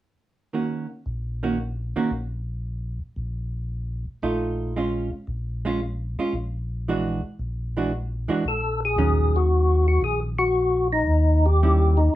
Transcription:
0.53 hollow-body jazz guitar D#3 A#3 C#4 F#4
1.06 tonewheel organ A#1
1.43 hollow-body jazz guitar D#3 A#3 C#4 F#4
1.96 hollow-body jazz guitar D#3 A#3 C#4 F#4
2.11 tonewheel organ A#1
3.16 tonewheel organ A#1
4.22 tonewheel organ A#1, hollow-body jazz guitar A3 D#4 F4
4.76 hollow-body jazz guitar G#3 C#4 F4
5.27 tonewheel organ A#1
5.65 hollow-body jazz guitar G#3 C#4 F4
6.19 hollow-body jazz guitar G#3 C#4 F4
6.33 tonewheel organ A#1
6.88 hollow-body jazz guitar E3 G#3 D4 F#4
7.39 tonewheel organ A#1
7.77 hollow-body jazz guitar E3 G#3 D4 F#4
8.28 hollow-body jazz guitar E3 G#3 D4 F#4
8.45 tonewheel organ A#1 A4
8.85 tonewheel organ G#4
8.96 tonewheel organ D#2, hollow-body jazz guitar D#3 F#3 C#4
9.36 tonewheel organ F#4
9.88 tonewheel organ F#4
10.02 tonewheel organ A#1 G#4
10.39 tonewheel organ F#4
10.93 tonewheel organ D#4
11.07 tonewheel organ D#2
11.46 tonewheel organ G4
11.63 hollow-body jazz guitar D#3 G3 C#4 E4
11.97 tonewheel organ D#4

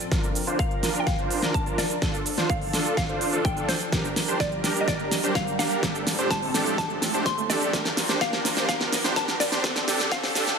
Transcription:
Already playing: analog synth pad F3, synth pluck D5, riser
0.00 shaker
0.12 supersaw synth D4 F4 A#4, analog synth pad D4 A#4, kick, snare, closed hi-hat, shaker
0.23 closed hi-hat, shaker
0.35 open hi-hat, shaker
0.47 supersaw synth D4 F4 C5, closed hi-hat, shaker
0.59 synth pluck F5, kick, closed hi-hat, shaker
0.71 closed hi-hat
0.83 supersaw synth D4 F4 A#4, snare, open hi-hat, shaker
0.95 closed hi-hat, shaker
1.00 synth pluck G5
1.07 synth pluck F5, kick, snare, closed hi-hat, shaker
1.19 supersaw synth D4 F4 C5, closed hi-hat
1.31 open hi-hat, shaker
1.42 supersaw synth D4 F4 A#4, snare, closed hi-hat, shaker
1.54 synth pluck A5, kick, closed hi-hat, shaker
1.66 supersaw synth D4 F4 A#4, closed hi-hat, shaker
1.78 synth pluck D5, snare, open hi-hat, shaker
1.90 closed hi-hat, shaker
2.02 supersaw synth D4 F4 A4, analog synth pad A4, kick, snare, closed hi-hat, shaker
2.14 closed hi-hat, shaker
2.26 open hi-hat, shaker
2.38 supersaw synth D4 F4 C5, snare, closed hi-hat, shaker
2.49 synth pluck F5, kick, closed hi-hat, shaker
2.62 open hi-hat
2.73 supersaw synth D4 F4 A4, snare, open hi-hat, shaker
2.85 closed hi-hat, shaker
2.97 synth pluck F5, kick, snare, closed hi-hat, shaker
3.09 supersaw synth D4 F4 C5, closed hi-hat
3.21 open hi-hat, shaker
3.33 supersaw synth D4 F4 A4, closed hi-hat, shaker
3.45 synth pluck G5, kick, closed hi-hat, shaker
3.57 supersaw synth D4 F4 A4, closed hi-hat, shaker
3.68 synth pluck C5, snare, open hi-hat, shaker
3.81 closed hi-hat, shaker
3.92 analog synth pad G3 A#4, supersaw synth D4 G4 A#4, kick, snare, closed hi-hat, shaker
4.04 closed hi-hat, shaker
4.16 snare, open hi-hat, shaker
4.28 supersaw synth D4 G4 C5, closed hi-hat, shaker
4.40 synth pluck D5, kick, snare, closed hi-hat, shaker
4.52 closed hi-hat
4.64 supersaw synth D4 G4 A#4, snare, open hi-hat, shaker
4.76 closed hi-hat, shaker
4.81 synth pluck D#5
4.88 supersaw synth D4 G4 A#4, synth pluck D5, kick, snare, closed hi-hat, shaker
5.00 closed hi-hat
5.11 snare, open hi-hat, shaker
5.23 supersaw synth D4 G4 C5, closed hi-hat, shaker
5.35 synth pluck F5, kick, snare, closed hi-hat, shaker
5.47 closed hi-hat, shaker
5.59 supersaw synth D4 G4 A#4, synth pluck F5, snare, open hi-hat, shaker
5.71 closed hi-hat, shaker
5.83 analog synth pad A2 F3 C4 A4, supersaw synth D4 G4 A4, kick, snare, closed hi-hat, shaker
5.95 closed hi-hat, shaker
6.07 snare, open hi-hat, shaker
6.19 supersaw synth D4 G4 C5, closed hi-hat, shaker
6.30 synth pluck A5, kick, snare, closed hi-hat, shaker
6.42 open hi-hat
6.54 supersaw synth D4 G4 A4, snare, open hi-hat, shaker
6.66 closed hi-hat, shaker
6.78 supersaw synth D4 G4 A4, synth pluck A5, kick, snare, closed hi-hat, shaker
6.90 closed hi-hat
7.02 snare, open hi-hat, shaker
7.14 supersaw synth D4 G4 C5, closed hi-hat, shaker
7.26 synth pluck C6, kick, snare, closed hi-hat, shaker
7.38 closed hi-hat, shaker
7.50 supersaw synth D4 G4 A4, synth pluck D5, snare, open hi-hat, shaker
7.62 closed hi-hat, shaker
7.73 analog synth pad F3 D4 A#4, supersaw synth D4 G4 A#4, kick, snare, closed hi-hat, shaker
7.85 snare, closed hi-hat, shaker
7.97 snare, open hi-hat, shaker
8.09 supersaw synth D4 G4 C5, snare, closed hi-hat, shaker
8.21 supersaw synth D4 G4 A#4, synth pluck F5, kick, snare, closed hi-hat, shaker
8.33 snare, closed hi-hat
8.45 snare, open hi-hat, shaker
8.57 supersaw synth D4 G4 C5, snare, closed hi-hat, shaker
8.69 supersaw synth D4 G4 A#4, synth pluck F5, kick, snare, closed hi-hat, shaker
8.81 snare, closed hi-hat
8.92 snare, open hi-hat, shaker
9.04 supersaw synth D4 G4 C5, snare, closed hi-hat, shaker
9.16 supersaw synth D4 G4 A#4, synth pluck A5, kick, snare, closed hi-hat, shaker
9.28 snare, closed hi-hat, shaker
9.40 synth pluck D5, snare, open hi-hat, shaker
9.52 supersaw synth D4 G4 C5, snare, closed hi-hat, shaker
9.64 supersaw synth D4 G4 A4, analog synth pad A4, kick, snare, closed hi-hat, shaker
9.76 snare, closed hi-hat, shaker
9.88 supersaw synth D4 G4 A4, snare, open hi-hat, shaker
10.00 snare, closed hi-hat, shaker
10.12 supersaw synth D4 G4 A4, synth pluck F5, kick, snare, closed hi-hat, shaker
10.23 snare, open hi-hat
10.35 supersaw synth D4 G4 A4, snare, open hi-hat, shaker
10.47 snare, closed hi-hat, shaker

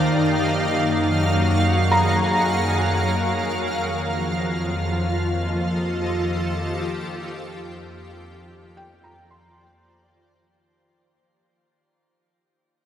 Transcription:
Already playing: double bass section D#2, ambient pad D#3 D#4 G4 D5 F5, synth drone D#3 A#3, felt piano A5
0.20 double bass section F#2, ambient pad F#3
0.89 ambient pad F#4
0.95 ambient pad G#4
1.75 ambient pad A#4
1.92 felt piano A#5
3.64 double bass section F2, ambient pad F3
3.83 ambient pad F4
4.84 ambient pad D#5
4.97 ambient pad A4
5.17 ambient pad G4
7.06 double bass section F2
8.60 ambient pad C5 D5
8.77 felt piano G5
9.04 felt piano A#5
9.31 felt piano C6

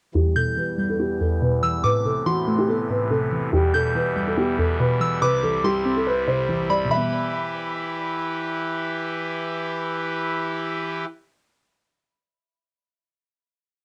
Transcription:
0.15 synth pluck E2, pipe organ E2 E3 G3 B3, grand piano G4
0.36 synth pluck B2, synth bell G6
0.57 synth pluck E3, grand piano B4
0.78 synth pluck G3
0.90 grand piano A4
0.99 synth pluck B3, grand piano G4
1.21 synth pluck E2, grand piano A4
1.42 synth pluck B2, grand piano B4
1.63 synth pluck E3, synth bell E6
1.84 pipe organ A2 C3, synth pluck A2, grand piano B4, synth bell D6
2.05 synth pluck C3, grand piano A4
2.26 synth pluck E3, grand piano F#4, synth bell C6
2.47 synth pluck A3
2.58 grand piano G4
2.68 synth pluck B3, grand piano A4
2.90 synth pluck A2, grand piano B4
3.11 synth pluck C3, grand piano A4
3.32 synth pluck E3
3.53 synth pluck E2, pipe organ E2 B2 G3 E4, grand piano G4
3.74 synth pluck B2, grand piano A4, synth bell G6
3.95 synth pluck E3, grand piano B4
4.16 synth pluck G3
4.27 grand piano A4
4.37 synth pluck B3, grand piano G4
4.58 synth pluck E2, grand piano A4
4.80 synth pluck B2, grand piano B4
5.00 synth pluck E3, synth bell E6
5.22 pipe organ C2 C3 G3, synth pluck C3, grand piano B4, synth bell D6
5.43 synth pluck E3, grand piano A4
5.64 synth pluck G3, grand piano G4, synth bell C6
5.85 synth pluck C4
5.97 grand piano A4
6.06 grand piano B4, synth pluck C5
6.28 synth pluck C3, grand piano C5
6.49 synth pluck E3
6.70 synth pluck G3, grand piano D5, synth bell B5
6.85 synth pluck B2
6.89 synth pluck E3 G3, pipe organ E3 E4 G4 B4, grand piano E5, synth bell B5
6.97 synth pluck B3

